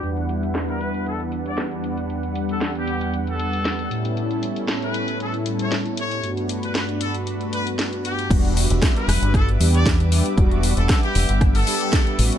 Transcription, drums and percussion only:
0.03 closed hi-hat
0.17 closed hi-hat
0.29 closed hi-hat
0.43 closed hi-hat
0.55 snare, closed hi-hat
0.69 closed hi-hat
0.81 closed hi-hat
0.94 closed hi-hat
1.06 closed hi-hat
1.20 closed hi-hat
1.32 closed hi-hat
1.46 closed hi-hat
1.58 snare, closed hi-hat
1.71 closed hi-hat
1.84 closed hi-hat
1.97 closed hi-hat
2.10 closed hi-hat
2.23 closed hi-hat
2.35 closed hi-hat
2.49 closed hi-hat
2.61 snare, closed hi-hat
2.75 closed hi-hat
2.87 closed hi-hat
3.01 closed hi-hat
3.14 closed hi-hat
3.27 closed hi-hat
3.40 closed hi-hat
3.53 closed hi-hat
3.65 snare, closed hi-hat
3.79 closed hi-hat
3.91 closed hi-hat
4.05 closed hi-hat
4.17 closed hi-hat
4.31 closed hi-hat
4.43 closed hi-hat
4.56 closed hi-hat
4.68 snare, closed hi-hat
4.82 closed hi-hat
4.94 closed hi-hat
5.08 closed hi-hat
5.20 closed hi-hat
5.34 closed hi-hat
5.46 closed hi-hat
5.59 closed hi-hat
5.72 snare, closed hi-hat
5.86 closed hi-hat
5.97 closed hi-hat
6.11 closed hi-hat
6.24 closed hi-hat
6.37 closed hi-hat
6.49 closed hi-hat
6.63 closed hi-hat
6.75 snare, closed hi-hat
6.89 closed hi-hat
7.01 closed hi-hat
7.14 closed hi-hat
7.27 closed hi-hat
7.41 closed hi-hat
7.53 closed hi-hat
7.67 closed hi-hat
7.79 snare, closed hi-hat
7.93 closed hi-hat
8.05 closed hi-hat
8.19 closed hi-hat
8.31 kick, closed hi-hat, crash
8.45 closed hi-hat
8.57 open hi-hat
8.70 closed hi-hat
8.82 kick, cross-stick, snare, closed hi-hat
8.96 closed hi-hat
9.09 cross-stick, open hi-hat
9.23 closed hi-hat
9.34 kick, cross-stick, closed hi-hat
9.49 closed hi-hat
9.61 open hi-hat
9.74 closed hi-hat
9.86 kick, snare, closed hi-hat
10.00 closed hi-hat
10.12 open hi-hat
10.26 closed hi-hat
10.38 kick, closed hi-hat
10.51 closed hi-hat
10.63 open hi-hat
10.77 closed hi-hat
10.89 kick, cross-stick, snare, closed hi-hat
11.03 closed hi-hat
11.15 open hi-hat
11.29 closed hi-hat
11.41 kick, cross-stick, closed hi-hat
11.55 open hi-hat
11.67 open hi-hat
11.81 closed hi-hat
11.93 kick, snare, closed hi-hat
12.07 closed hi-hat
12.19 open hi-hat
12.32 closed hi-hat

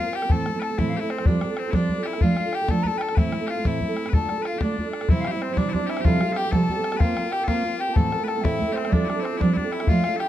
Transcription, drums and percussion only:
0.13 bodhran
0.22 bodhran
0.30 bodhran
0.46 bodhran
0.62 bodhran
0.79 bodhran
1.10 bodhran
1.18 bodhran
1.26 bodhran
1.41 bodhran
1.57 bodhran
1.73 bodhran
1.89 bodhran
2.06 bodhran
2.13 bodhran
2.21 bodhran
2.37 bodhran
2.53 bodhran
2.68 bodhran
2.84 bodhran
3.01 bodhran
3.09 bodhran
3.17 bodhran
3.32 bodhran
3.48 bodhran
3.65 bodhran
3.81 bodhran
3.97 bodhran
4.06 bodhran
4.13 bodhran
4.29 bodhran
4.45 bodhran
4.61 bodhran
4.78 bodhran
4.93 bodhran
5.01 bodhran
5.09 bodhran
5.25 bodhran
5.42 bodhran
5.57 bodhran
5.74 bodhran
5.90 bodhran
5.97 bodhran
6.05 bodhran
6.21 bodhran
6.36 bodhran
6.52 bodhran
6.69 bodhran
6.84 bodhran
6.92 bodhran
7.00 bodhran
7.17 bodhran
7.32 bodhran
7.48 bodhran
7.96 bodhran
8.12 bodhran
8.28 bodhran
8.45 bodhran
8.61 bodhran
8.77 bodhran
8.85 bodhran
8.93 bodhran
9.10 bodhran
9.25 bodhran
9.41 bodhran
9.57 bodhran
9.72 bodhran
9.80 bodhran
9.87 bodhran
10.04 bodhran
10.20 bodhran

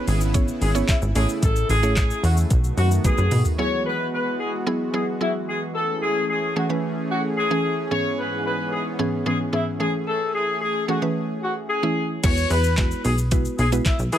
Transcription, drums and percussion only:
0.08 open hi-hat, shaker
0.21 shaker
0.34 kick, closed hi-hat, shaker
0.48 shaker
0.62 open hi-hat, shaker
0.75 shaker
0.88 kick, clap, closed hi-hat, shaker
1.02 shaker
1.15 open hi-hat, shaker
1.29 shaker
1.43 kick, closed hi-hat, shaker
1.56 shaker
1.70 open hi-hat, shaker
1.83 shaker
1.96 kick, clap, closed hi-hat, shaker
2.10 shaker
2.24 open hi-hat, shaker
2.37 shaker
2.50 kick, closed hi-hat, shaker
2.64 shaker
2.78 open hi-hat, shaker
2.91 shaker
3.04 kick, closed hi-hat, high tom, shaker
3.18 shaker
3.31 mid tom, open hi-hat, shaker
3.45 floor tom, shaker
12.24 kick, closed hi-hat, crash, shaker
12.37 shaker
12.50 open hi-hat, shaker
12.64 shaker
12.77 kick, clap, closed hi-hat, shaker
12.91 shaker
13.05 open hi-hat, shaker
13.18 shaker
13.31 kick, closed hi-hat, shaker
13.45 shaker
13.59 open hi-hat, shaker
13.72 shaker
13.86 kick, clap, closed hi-hat, shaker
13.99 shaker
14.12 open hi-hat, shaker

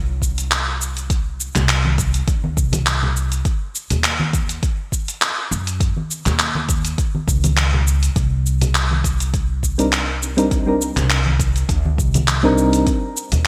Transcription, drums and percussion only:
0.22 kick, cabasa
0.38 closed hi-hat, cabasa
0.51 clap, closed hi-hat, cabasa
0.81 cabasa
0.97 closed hi-hat, cabasa
1.10 kick, closed hi-hat, cabasa
1.40 cabasa
1.55 clap, closed hi-hat, low conga, cabasa
1.69 clap, closed hi-hat, cabasa
1.85 high conga
1.98 kick, closed hi-hat, cabasa
2.14 closed hi-hat, cabasa
2.28 kick, closed hi-hat, cabasa
2.44 high conga
2.57 kick, cabasa
2.72 closed hi-hat, high conga, low conga, cabasa
2.86 clap, closed hi-hat, cabasa
3.03 low conga
3.17 cabasa
3.32 closed hi-hat, cabasa
3.45 kick, closed hi-hat, cabasa
3.75 cabasa
3.90 closed hi-hat, low conga, cabasa
4.04 clap, closed hi-hat, cabasa
4.20 high conga
4.33 kick, closed hi-hat, cabasa
4.49 closed hi-hat, cabasa
4.63 kick, closed hi-hat, cabasa
4.92 kick, cabasa
5.08 closed hi-hat, cabasa
5.22 clap, closed hi-hat, cabasa
5.52 cabasa
5.67 closed hi-hat, cabasa
5.80 kick, closed hi-hat, cabasa
5.97 high conga
6.11 cabasa
6.26 clap, closed hi-hat, low conga, cabasa
6.39 clap, closed hi-hat, cabasa
6.55 high conga
6.69 kick, closed hi-hat, cabasa
6.85 closed hi-hat, cabasa
6.98 kick, closed hi-hat, cabasa
7.15 high conga
7.28 kick, cabasa
7.44 closed hi-hat, high conga, low conga, cabasa
7.57 clap, closed hi-hat, cabasa
7.74 low conga
7.87 cabasa
8.03 closed hi-hat, cabasa
8.16 kick, closed hi-hat, cabasa
8.46 cabasa
8.61 closed hi-hat, low conga, cabasa
8.75 clap, closed hi-hat, cabasa
8.91 high conga
9.04 kick, closed hi-hat, cabasa
9.20 closed hi-hat, cabasa
9.34 kick, closed hi-hat, cabasa
9.63 kick, cabasa
9.79 closed hi-hat, cabasa
9.92 clap, closed hi-hat, cabasa
10.23 cabasa
10.38 closed hi-hat, cabasa
10.51 kick, closed hi-hat, cabasa
10.82 cabasa
10.96 clap, closed hi-hat, low conga, cabasa
11.10 clap, closed hi-hat, cabasa
11.26 high conga
11.39 kick, closed hi-hat, cabasa
11.56 closed hi-hat, cabasa
11.69 kick, closed hi-hat, cabasa
11.85 high conga
11.98 kick, cabasa
12.14 closed hi-hat, high conga, low conga, cabasa
12.28 clap, closed hi-hat, cabasa
12.45 low conga
12.58 cabasa
12.73 closed hi-hat, cabasa
12.87 kick, closed hi-hat, cabasa
13.17 cabasa
13.32 closed hi-hat, low conga, cabasa

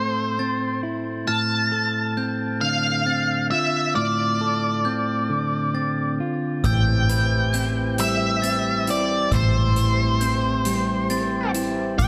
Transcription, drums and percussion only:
6.64 kick, closed hi-hat
7.09 closed hi-hat
7.54 closed hi-hat
7.98 closed hi-hat
8.43 closed hi-hat
8.87 closed hi-hat
9.32 kick, closed hi-hat
9.76 closed hi-hat
10.21 closed hi-hat
10.65 closed hi-hat
11.10 closed hi-hat
11.54 closed hi-hat
11.99 kick, closed hi-hat

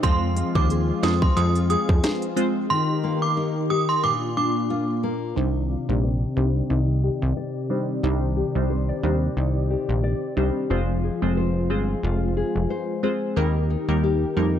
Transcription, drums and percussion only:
0.03 kick, closed hi-hat
0.37 closed hi-hat
0.55 kick
0.70 closed hi-hat
1.03 cross-stick, snare, closed hi-hat
1.22 kick
1.37 closed hi-hat
1.56 closed hi-hat
1.70 closed hi-hat
1.89 kick
2.04 cross-stick, snare, closed hi-hat
2.22 closed hi-hat
2.37 closed hi-hat

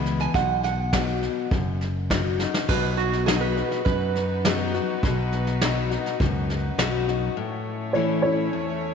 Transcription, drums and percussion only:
0.06 snare
0.20 snare
0.34 kick, snare
0.63 snare
0.93 kick, snare, hi-hat pedal
1.22 snare
1.51 kick, snare
1.81 snare
2.10 kick, snare, hi-hat pedal
2.40 snare
2.54 snare
2.69 kick, snare, crash
2.99 snare
3.13 snare
3.28 snare, hi-hat pedal
3.57 snare
3.71 snare
3.86 kick, snare
4.15 snare
4.45 snare, hi-hat pedal
4.74 snare
5.03 kick, snare
5.32 snare
5.47 snare
5.61 snare, hi-hat pedal
5.91 snare
6.06 snare
6.20 kick, snare
6.50 snare
6.79 snare, hi-hat pedal
7.09 snare

